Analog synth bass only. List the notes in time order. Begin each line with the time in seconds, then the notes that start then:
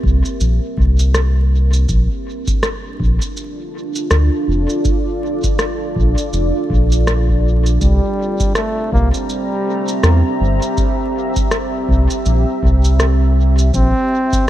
0.04 C2
0.41 A#1
0.78 C2
1.89 A#1
3.00 A#1
4.11 D2
4.48 F1
5.96 A#1
6.33 F1
6.70 A#1
7.81 C2
8.93 C2
10.04 E2
10.41 G1
11.89 C2
12.26 A#1
12.63 C2
13.74 A#1